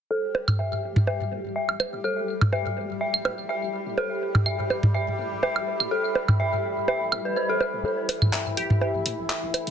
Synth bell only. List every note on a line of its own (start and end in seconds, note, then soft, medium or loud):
0.11 0.17 A4 medium
0.59 0.64 E5 medium
1.07 1.14 E5 medium
1.56 1.60 E5 medium
2.04 2.11 A4 medium
2.52 2.57 E5 medium
3.01 3.08 E5 loud
3.49 3.54 E5 medium
3.98 4.04 A4 loud
4.46 4.51 E5 medium
4.94 5.01 E5 medium
5.43 5.47 E5 loud
5.91 5.98 A4 loud
6.40 6.44 E5 medium
6.88 6.95 E5 loud
7.25 7.29 B4 medium
7.36 7.43 C5 medium
7.49 7.52 A4 loud
7.85 7.92 A4 loud
8.33 8.38 E5 loud
8.81 8.88 E5 loud
9.30 9.34 E5 medium